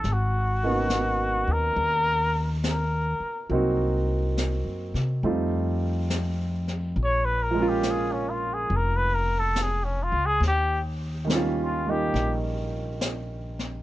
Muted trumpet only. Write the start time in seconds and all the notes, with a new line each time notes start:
Already playing: A4
0.13 F#4
1.52 A#4
2.72 A#4
7.04 C#5
7.25 B4
7.43 A#4
7.68 G4
7.90 G#4
8.13 C#4
8.30 F4
8.54 G#4
8.76 A#4
8.97 B4
9.14 A#4
9.39 A4
9.62 G#4
9.84 C#4
10.03 F4
10.26 G#4
10.48 G4
11.63 F4
11.90 G4